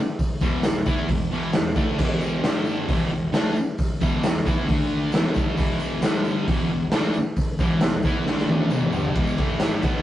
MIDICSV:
0, 0, Header, 1, 3, 480
1, 0, Start_track
1, 0, Tempo, 448096
1, 206, Time_signature, 4, 2, 24, 8
1, 10734, End_track
2, 0, Start_track
2, 0, Title_t, "Distorted electric guitar"
2, 0, Program_c, 0, 30
2, 441, Note_on_c, 0, 40, 83
2, 449, Note_on_c, 0, 47, 105
2, 457, Note_on_c, 0, 52, 108
2, 664, Note_off_c, 0, 40, 0
2, 670, Note_off_c, 0, 47, 0
2, 677, Note_on_c, 0, 40, 59
2, 683, Note_on_c, 0, 47, 61
2, 684, Note_off_c, 0, 52, 0
2, 873, Note_off_c, 0, 40, 0
2, 876, Note_off_c, 0, 47, 0
2, 922, Note_on_c, 0, 52, 94
2, 923, Note_on_c, 0, 59, 98
2, 931, Note_on_c, 0, 64, 116
2, 1156, Note_off_c, 0, 52, 0
2, 1157, Note_off_c, 0, 59, 0
2, 1161, Note_off_c, 0, 64, 0
2, 1171, Note_on_c, 0, 47, 75
2, 1173, Note_on_c, 0, 40, 61
2, 1360, Note_off_c, 0, 47, 0
2, 1361, Note_off_c, 0, 40, 0
2, 1409, Note_on_c, 0, 40, 97
2, 1416, Note_on_c, 0, 47, 80
2, 1428, Note_on_c, 0, 52, 104
2, 1631, Note_off_c, 0, 40, 0
2, 1633, Note_off_c, 0, 47, 0
2, 1644, Note_on_c, 0, 40, 68
2, 1646, Note_on_c, 0, 47, 71
2, 1649, Note_off_c, 0, 52, 0
2, 1836, Note_off_c, 0, 40, 0
2, 1838, Note_off_c, 0, 47, 0
2, 1881, Note_on_c, 0, 50, 93
2, 1886, Note_on_c, 0, 57, 89
2, 1891, Note_on_c, 0, 62, 92
2, 2116, Note_off_c, 0, 50, 0
2, 2118, Note_off_c, 0, 57, 0
2, 2121, Note_off_c, 0, 62, 0
2, 2121, Note_on_c, 0, 40, 89
2, 2133, Note_on_c, 0, 47, 97
2, 2133, Note_on_c, 0, 52, 97
2, 2593, Note_off_c, 0, 40, 0
2, 2597, Note_on_c, 0, 43, 89
2, 2601, Note_off_c, 0, 47, 0
2, 2602, Note_off_c, 0, 52, 0
2, 2605, Note_on_c, 0, 50, 94
2, 2610, Note_on_c, 0, 55, 91
2, 3075, Note_off_c, 0, 43, 0
2, 3079, Note_off_c, 0, 50, 0
2, 3081, Note_off_c, 0, 55, 0
2, 3082, Note_on_c, 0, 40, 94
2, 3092, Note_on_c, 0, 47, 93
2, 3102, Note_on_c, 0, 52, 102
2, 3317, Note_off_c, 0, 40, 0
2, 3322, Note_off_c, 0, 47, 0
2, 3327, Note_off_c, 0, 52, 0
2, 3332, Note_on_c, 0, 40, 63
2, 3334, Note_on_c, 0, 47, 73
2, 3521, Note_off_c, 0, 40, 0
2, 3523, Note_off_c, 0, 47, 0
2, 3565, Note_on_c, 0, 50, 107
2, 3577, Note_on_c, 0, 57, 104
2, 3578, Note_on_c, 0, 62, 104
2, 3799, Note_off_c, 0, 50, 0
2, 3805, Note_off_c, 0, 57, 0
2, 3806, Note_off_c, 0, 62, 0
2, 4292, Note_on_c, 0, 40, 93
2, 4300, Note_on_c, 0, 47, 95
2, 4303, Note_on_c, 0, 52, 102
2, 4523, Note_off_c, 0, 40, 0
2, 4527, Note_off_c, 0, 47, 0
2, 4528, Note_off_c, 0, 52, 0
2, 4541, Note_on_c, 0, 40, 67
2, 4544, Note_on_c, 0, 47, 73
2, 4727, Note_off_c, 0, 40, 0
2, 4728, Note_off_c, 0, 47, 0
2, 4771, Note_on_c, 0, 52, 107
2, 4776, Note_on_c, 0, 59, 103
2, 4780, Note_on_c, 0, 64, 99
2, 5000, Note_off_c, 0, 52, 0
2, 5004, Note_on_c, 0, 50, 110
2, 5005, Note_off_c, 0, 59, 0
2, 5008, Note_off_c, 0, 64, 0
2, 5012, Note_on_c, 0, 57, 94
2, 5022, Note_on_c, 0, 62, 115
2, 5480, Note_off_c, 0, 50, 0
2, 5484, Note_off_c, 0, 57, 0
2, 5484, Note_on_c, 0, 40, 103
2, 5489, Note_off_c, 0, 62, 0
2, 5493, Note_on_c, 0, 47, 98
2, 5495, Note_on_c, 0, 52, 107
2, 5712, Note_off_c, 0, 40, 0
2, 5716, Note_on_c, 0, 43, 91
2, 5724, Note_off_c, 0, 47, 0
2, 5725, Note_off_c, 0, 52, 0
2, 5733, Note_on_c, 0, 50, 87
2, 5733, Note_on_c, 0, 55, 99
2, 5956, Note_off_c, 0, 43, 0
2, 5964, Note_off_c, 0, 50, 0
2, 5964, Note_off_c, 0, 55, 0
2, 5966, Note_on_c, 0, 40, 80
2, 5972, Note_on_c, 0, 47, 83
2, 5982, Note_on_c, 0, 52, 94
2, 6441, Note_off_c, 0, 40, 0
2, 6444, Note_off_c, 0, 47, 0
2, 6446, Note_on_c, 0, 43, 96
2, 6449, Note_off_c, 0, 52, 0
2, 6455, Note_on_c, 0, 50, 104
2, 6462, Note_on_c, 0, 55, 90
2, 6921, Note_off_c, 0, 43, 0
2, 6926, Note_off_c, 0, 50, 0
2, 6929, Note_off_c, 0, 55, 0
2, 6934, Note_on_c, 0, 40, 98
2, 6941, Note_on_c, 0, 47, 109
2, 6953, Note_on_c, 0, 52, 110
2, 7159, Note_off_c, 0, 40, 0
2, 7169, Note_off_c, 0, 47, 0
2, 7172, Note_on_c, 0, 40, 61
2, 7174, Note_off_c, 0, 52, 0
2, 7179, Note_on_c, 0, 47, 69
2, 7363, Note_off_c, 0, 40, 0
2, 7367, Note_off_c, 0, 47, 0
2, 7404, Note_on_c, 0, 50, 84
2, 7408, Note_on_c, 0, 57, 100
2, 7418, Note_on_c, 0, 62, 114
2, 7640, Note_off_c, 0, 50, 0
2, 7642, Note_off_c, 0, 57, 0
2, 7647, Note_off_c, 0, 62, 0
2, 8136, Note_on_c, 0, 40, 93
2, 8143, Note_on_c, 0, 47, 87
2, 8149, Note_on_c, 0, 52, 99
2, 8366, Note_off_c, 0, 40, 0
2, 8369, Note_off_c, 0, 47, 0
2, 8372, Note_off_c, 0, 52, 0
2, 8377, Note_on_c, 0, 40, 67
2, 8381, Note_on_c, 0, 47, 73
2, 8566, Note_off_c, 0, 40, 0
2, 8567, Note_off_c, 0, 47, 0
2, 8620, Note_on_c, 0, 52, 86
2, 8628, Note_on_c, 0, 59, 116
2, 8632, Note_on_c, 0, 64, 105
2, 8845, Note_off_c, 0, 52, 0
2, 8849, Note_on_c, 0, 50, 90
2, 8852, Note_off_c, 0, 59, 0
2, 8854, Note_off_c, 0, 64, 0
2, 8858, Note_on_c, 0, 57, 108
2, 8860, Note_on_c, 0, 62, 103
2, 9322, Note_off_c, 0, 50, 0
2, 9326, Note_off_c, 0, 57, 0
2, 9327, Note_off_c, 0, 62, 0
2, 9332, Note_on_c, 0, 40, 91
2, 9340, Note_on_c, 0, 47, 98
2, 9346, Note_on_c, 0, 52, 113
2, 9563, Note_off_c, 0, 40, 0
2, 9567, Note_on_c, 0, 43, 78
2, 9568, Note_off_c, 0, 47, 0
2, 9571, Note_off_c, 0, 52, 0
2, 9574, Note_on_c, 0, 50, 81
2, 9581, Note_on_c, 0, 55, 90
2, 9791, Note_off_c, 0, 43, 0
2, 9796, Note_on_c, 0, 40, 91
2, 9799, Note_off_c, 0, 50, 0
2, 9803, Note_on_c, 0, 47, 87
2, 9807, Note_off_c, 0, 55, 0
2, 9811, Note_on_c, 0, 52, 95
2, 10032, Note_off_c, 0, 52, 0
2, 10035, Note_off_c, 0, 40, 0
2, 10038, Note_off_c, 0, 47, 0
2, 10042, Note_on_c, 0, 45, 88
2, 10045, Note_on_c, 0, 52, 93
2, 10051, Note_on_c, 0, 57, 94
2, 10513, Note_off_c, 0, 45, 0
2, 10517, Note_on_c, 0, 47, 92
2, 10519, Note_off_c, 0, 52, 0
2, 10523, Note_off_c, 0, 57, 0
2, 10524, Note_on_c, 0, 54, 99
2, 10532, Note_on_c, 0, 59, 109
2, 10734, Note_off_c, 0, 47, 0
2, 10734, Note_off_c, 0, 54, 0
2, 10734, Note_off_c, 0, 59, 0
2, 10734, End_track
3, 0, Start_track
3, 0, Title_t, "Drums"
3, 202, Note_on_c, 9, 46, 70
3, 205, Note_on_c, 9, 36, 108
3, 208, Note_on_c, 9, 54, 74
3, 310, Note_off_c, 9, 46, 0
3, 313, Note_off_c, 9, 36, 0
3, 315, Note_off_c, 9, 54, 0
3, 435, Note_on_c, 9, 54, 89
3, 445, Note_on_c, 9, 36, 115
3, 542, Note_off_c, 9, 54, 0
3, 552, Note_off_c, 9, 36, 0
3, 678, Note_on_c, 9, 38, 104
3, 678, Note_on_c, 9, 46, 65
3, 681, Note_on_c, 9, 54, 119
3, 785, Note_off_c, 9, 38, 0
3, 785, Note_off_c, 9, 46, 0
3, 788, Note_off_c, 9, 54, 0
3, 919, Note_on_c, 9, 54, 80
3, 927, Note_on_c, 9, 36, 108
3, 1026, Note_off_c, 9, 54, 0
3, 1034, Note_off_c, 9, 36, 0
3, 1164, Note_on_c, 9, 36, 93
3, 1165, Note_on_c, 9, 46, 65
3, 1271, Note_off_c, 9, 36, 0
3, 1272, Note_off_c, 9, 46, 0
3, 1641, Note_on_c, 9, 54, 86
3, 1644, Note_on_c, 9, 38, 112
3, 1644, Note_on_c, 9, 46, 54
3, 1748, Note_off_c, 9, 54, 0
3, 1751, Note_off_c, 9, 38, 0
3, 1751, Note_off_c, 9, 46, 0
3, 1883, Note_on_c, 9, 54, 73
3, 1886, Note_on_c, 9, 36, 111
3, 1990, Note_off_c, 9, 54, 0
3, 1993, Note_off_c, 9, 36, 0
3, 2126, Note_on_c, 9, 54, 65
3, 2128, Note_on_c, 9, 36, 105
3, 2130, Note_on_c, 9, 49, 105
3, 2233, Note_off_c, 9, 54, 0
3, 2235, Note_off_c, 9, 36, 0
3, 2238, Note_off_c, 9, 49, 0
3, 2365, Note_on_c, 9, 54, 81
3, 2472, Note_off_c, 9, 54, 0
3, 2612, Note_on_c, 9, 38, 103
3, 2612, Note_on_c, 9, 46, 54
3, 2618, Note_on_c, 9, 54, 98
3, 2719, Note_off_c, 9, 38, 0
3, 2719, Note_off_c, 9, 46, 0
3, 2725, Note_off_c, 9, 54, 0
3, 2843, Note_on_c, 9, 54, 73
3, 2950, Note_off_c, 9, 54, 0
3, 3085, Note_on_c, 9, 54, 22
3, 3092, Note_on_c, 9, 36, 121
3, 3093, Note_on_c, 9, 46, 64
3, 3192, Note_off_c, 9, 54, 0
3, 3200, Note_off_c, 9, 36, 0
3, 3200, Note_off_c, 9, 46, 0
3, 3574, Note_on_c, 9, 54, 82
3, 3576, Note_on_c, 9, 38, 115
3, 3576, Note_on_c, 9, 46, 57
3, 3681, Note_off_c, 9, 54, 0
3, 3683, Note_off_c, 9, 38, 0
3, 3683, Note_off_c, 9, 46, 0
3, 3807, Note_on_c, 9, 54, 66
3, 3914, Note_off_c, 9, 54, 0
3, 4051, Note_on_c, 9, 54, 69
3, 4057, Note_on_c, 9, 36, 111
3, 4060, Note_on_c, 9, 46, 66
3, 4158, Note_off_c, 9, 54, 0
3, 4165, Note_off_c, 9, 36, 0
3, 4167, Note_off_c, 9, 46, 0
3, 4295, Note_on_c, 9, 54, 73
3, 4300, Note_on_c, 9, 36, 111
3, 4402, Note_off_c, 9, 54, 0
3, 4407, Note_off_c, 9, 36, 0
3, 4533, Note_on_c, 9, 54, 102
3, 4539, Note_on_c, 9, 38, 109
3, 4539, Note_on_c, 9, 46, 66
3, 4641, Note_off_c, 9, 54, 0
3, 4646, Note_off_c, 9, 38, 0
3, 4646, Note_off_c, 9, 46, 0
3, 4782, Note_on_c, 9, 36, 113
3, 4785, Note_on_c, 9, 54, 71
3, 4889, Note_off_c, 9, 36, 0
3, 4892, Note_off_c, 9, 54, 0
3, 5015, Note_on_c, 9, 54, 30
3, 5020, Note_on_c, 9, 46, 65
3, 5022, Note_on_c, 9, 36, 118
3, 5122, Note_off_c, 9, 54, 0
3, 5127, Note_off_c, 9, 46, 0
3, 5129, Note_off_c, 9, 36, 0
3, 5485, Note_on_c, 9, 54, 92
3, 5505, Note_on_c, 9, 38, 111
3, 5505, Note_on_c, 9, 46, 53
3, 5592, Note_off_c, 9, 54, 0
3, 5612, Note_off_c, 9, 38, 0
3, 5612, Note_off_c, 9, 46, 0
3, 5721, Note_on_c, 9, 54, 83
3, 5744, Note_on_c, 9, 36, 103
3, 5828, Note_off_c, 9, 54, 0
3, 5852, Note_off_c, 9, 36, 0
3, 5968, Note_on_c, 9, 54, 71
3, 5984, Note_on_c, 9, 36, 119
3, 5986, Note_on_c, 9, 46, 59
3, 6075, Note_off_c, 9, 54, 0
3, 6091, Note_off_c, 9, 36, 0
3, 6093, Note_off_c, 9, 46, 0
3, 6208, Note_on_c, 9, 54, 89
3, 6315, Note_off_c, 9, 54, 0
3, 6447, Note_on_c, 9, 54, 102
3, 6456, Note_on_c, 9, 38, 104
3, 6456, Note_on_c, 9, 46, 52
3, 6555, Note_off_c, 9, 54, 0
3, 6563, Note_off_c, 9, 38, 0
3, 6563, Note_off_c, 9, 46, 0
3, 6690, Note_on_c, 9, 54, 78
3, 6797, Note_off_c, 9, 54, 0
3, 6938, Note_on_c, 9, 46, 61
3, 6939, Note_on_c, 9, 36, 118
3, 6940, Note_on_c, 9, 54, 27
3, 7045, Note_off_c, 9, 46, 0
3, 7046, Note_off_c, 9, 36, 0
3, 7047, Note_off_c, 9, 54, 0
3, 7410, Note_on_c, 9, 38, 115
3, 7410, Note_on_c, 9, 46, 62
3, 7410, Note_on_c, 9, 54, 82
3, 7517, Note_off_c, 9, 38, 0
3, 7517, Note_off_c, 9, 46, 0
3, 7517, Note_off_c, 9, 54, 0
3, 7646, Note_on_c, 9, 54, 67
3, 7753, Note_off_c, 9, 54, 0
3, 7887, Note_on_c, 9, 54, 58
3, 7892, Note_on_c, 9, 36, 104
3, 7892, Note_on_c, 9, 46, 66
3, 7994, Note_off_c, 9, 54, 0
3, 7999, Note_off_c, 9, 46, 0
3, 8000, Note_off_c, 9, 36, 0
3, 8128, Note_on_c, 9, 54, 74
3, 8131, Note_on_c, 9, 36, 121
3, 8236, Note_off_c, 9, 54, 0
3, 8238, Note_off_c, 9, 36, 0
3, 8361, Note_on_c, 9, 54, 92
3, 8367, Note_on_c, 9, 38, 104
3, 8367, Note_on_c, 9, 46, 64
3, 8468, Note_off_c, 9, 54, 0
3, 8474, Note_off_c, 9, 38, 0
3, 8474, Note_off_c, 9, 46, 0
3, 8595, Note_on_c, 9, 54, 74
3, 8612, Note_on_c, 9, 36, 99
3, 8702, Note_off_c, 9, 54, 0
3, 8719, Note_off_c, 9, 36, 0
3, 8841, Note_on_c, 9, 54, 23
3, 8852, Note_on_c, 9, 38, 67
3, 8948, Note_off_c, 9, 54, 0
3, 8959, Note_off_c, 9, 38, 0
3, 8978, Note_on_c, 9, 38, 55
3, 9085, Note_off_c, 9, 38, 0
3, 9088, Note_on_c, 9, 54, 31
3, 9094, Note_on_c, 9, 48, 76
3, 9195, Note_off_c, 9, 54, 0
3, 9201, Note_off_c, 9, 48, 0
3, 9209, Note_on_c, 9, 48, 62
3, 9316, Note_off_c, 9, 48, 0
3, 9323, Note_on_c, 9, 54, 92
3, 9333, Note_on_c, 9, 47, 86
3, 9430, Note_off_c, 9, 54, 0
3, 9440, Note_off_c, 9, 47, 0
3, 9448, Note_on_c, 9, 45, 81
3, 9555, Note_off_c, 9, 45, 0
3, 9559, Note_on_c, 9, 54, 77
3, 9569, Note_on_c, 9, 43, 96
3, 9666, Note_off_c, 9, 54, 0
3, 9676, Note_off_c, 9, 43, 0
3, 9690, Note_on_c, 9, 43, 97
3, 9797, Note_off_c, 9, 43, 0
3, 9806, Note_on_c, 9, 51, 93
3, 9811, Note_on_c, 9, 36, 111
3, 9914, Note_off_c, 9, 51, 0
3, 9918, Note_off_c, 9, 36, 0
3, 9931, Note_on_c, 9, 54, 74
3, 10038, Note_off_c, 9, 54, 0
3, 10047, Note_on_c, 9, 51, 70
3, 10051, Note_on_c, 9, 36, 97
3, 10056, Note_on_c, 9, 54, 29
3, 10154, Note_off_c, 9, 51, 0
3, 10158, Note_off_c, 9, 36, 0
3, 10163, Note_off_c, 9, 54, 0
3, 10165, Note_on_c, 9, 54, 28
3, 10272, Note_off_c, 9, 54, 0
3, 10280, Note_on_c, 9, 38, 110
3, 10280, Note_on_c, 9, 51, 78
3, 10284, Note_on_c, 9, 54, 105
3, 10388, Note_off_c, 9, 38, 0
3, 10388, Note_off_c, 9, 51, 0
3, 10392, Note_off_c, 9, 54, 0
3, 10520, Note_on_c, 9, 54, 73
3, 10529, Note_on_c, 9, 51, 66
3, 10532, Note_on_c, 9, 36, 104
3, 10627, Note_off_c, 9, 54, 0
3, 10636, Note_off_c, 9, 51, 0
3, 10639, Note_off_c, 9, 36, 0
3, 10734, End_track
0, 0, End_of_file